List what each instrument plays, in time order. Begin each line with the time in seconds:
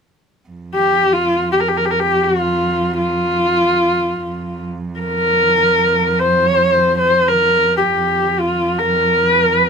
0.49 cello F2
0.75 horsehead fiddle G4
1.13 horsehead fiddle F4
1.52 horsehead fiddle G4
1.60 horsehead fiddle A#4
1.69 horsehead fiddle G4
1.77 horsehead fiddle A#4
1.86 horsehead fiddle G4
1.91 horsehead fiddle A#4
2.00 horsehead fiddle G4
2.24 horsehead fiddle F4
2.98 horsehead fiddle F4
4.22 cello F2
5.00 horsehead fiddle A#4
6.19 horsehead fiddle C5
6.98 horsehead fiddle C5
7.28 horsehead fiddle A#4
7.77 horsehead fiddle G4
7.93 cello F2
8.39 horsehead fiddle F4
8.78 horsehead fiddle A#4
9.27 horsehead fiddle B4
9.40 horsehead fiddle A#4
9.54 horsehead fiddle B4
9.67 horsehead fiddle A#4